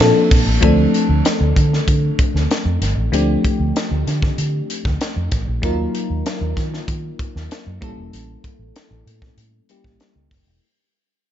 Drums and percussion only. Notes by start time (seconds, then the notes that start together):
0.00 snare, ride
0.31 kick, snare, open hi-hat, ride
0.62 kick, closed hi-hat
0.94 closed hi-hat
1.25 snare, closed hi-hat
1.56 kick, closed hi-hat
1.73 snare
1.88 kick, closed hi-hat
2.19 kick, closed hi-hat
2.36 snare
2.51 snare, closed hi-hat
2.82 snare, closed hi-hat
3.13 closed hi-hat
3.45 kick, closed hi-hat
3.76 snare, closed hi-hat
4.07 snare, closed hi-hat
4.22 kick, snare
4.38 closed hi-hat
4.70 closed hi-hat
4.85 kick, snare
5.01 snare, closed hi-hat
5.32 kick, snare, closed hi-hat
5.63 kick, closed hi-hat
5.95 closed hi-hat
6.26 snare, closed hi-hat
6.57 kick, snare, closed hi-hat
6.74 snare
6.88 kick, closed hi-hat
7.19 kick, closed hi-hat
7.36 snare
7.51 snare, closed hi-hat
7.82 kick, closed hi-hat
8.13 closed hi-hat
8.44 kick, closed hi-hat
8.76 snare, closed hi-hat
9.07 closed hi-hat
9.22 kick, snare
9.38 closed hi-hat
9.69 closed hi-hat
9.84 kick, snare
10.00 snare, closed hi-hat
10.31 kick, snare, open hi-hat